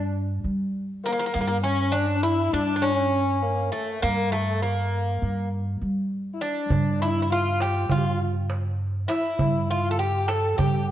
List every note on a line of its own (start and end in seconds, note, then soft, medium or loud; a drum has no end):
0.00 0.40 G2 medium
0.00 0.11 D4 medium
0.00 0.14 D4 medium
0.44 1.30 G3 medium
1.04 1.46 A#3 medium
1.04 1.11 A#3 medium
1.12 1.18 A#3 medium
1.19 1.25 A#3 medium
1.26 1.32 A#3 medium
1.34 2.50 G2 medium
1.34 1.40 A#3 medium
1.41 1.46 A#3 medium
1.47 1.56 A#3 medium
1.47 1.63 A#3 medium
1.64 1.94 C#4 medium
1.92 2.23 D4 loud
1.92 2.24 D4 medium
2.23 2.54 E4 medium
2.23 2.51 E4 medium
2.53 3.69 G2 medium
2.53 2.82 D4 medium
2.53 2.75 D4 medium
2.76 2.83 D4 medium
2.82 3.71 C#4 medium
2.82 2.94 D4 medium
2.94 3.43 C#4 medium
3.42 3.74 A#3 medium
3.72 4.02 A3 medium
3.72 4.01 A3 medium
4.02 5.18 G2 medium
4.02 4.32 A#3 medium
4.31 4.63 A3 medium
4.31 4.62 A3 medium
4.62 5.51 A#3 medium
4.62 5.48 A#3 medium
5.22 5.78 G2 medium
5.81 6.67 G3 medium
6.34 6.43 E4 medium
6.41 7.03 D4 medium
6.41 7.01 D4 medium
6.70 7.86 G2 medium
6.70 darbuka dum medium
7.00 7.32 E4 medium
7.00 7.21 E4 medium
7.22 7.30 E4 medium
7.30 7.90 F4 medium
7.30 7.61 F4 medium
7.60 7.91 G4 medium
7.60 darbuka tek medium
7.90 9.05 G2 medium
7.90 7.99 F4 medium
7.90 8.19 F4 medium
7.90 darbuka dum medium
7.98 8.06 G4 medium
8.05 8.20 F4 medium
8.34 darbuka ka soft
8.50 darbuka tek medium
9.08 9.70 E4 medium
9.08 9.71 E4 medium
9.08 darbuka tek medium
9.39 10.54 G2 medium
9.39 darbuka dum medium
9.70 10.01 F4 medium
9.70 9.90 F4 medium
9.91 9.98 A4 medium
9.99 10.28 G4 medium
9.99 10.30 G4 medium
10.28 10.57 A4 medium
10.28 10.58 A4 medium
10.28 darbuka tek medium
10.58 10.91 G2 medium
10.58 10.86 G4 medium
10.58 darbuka dum medium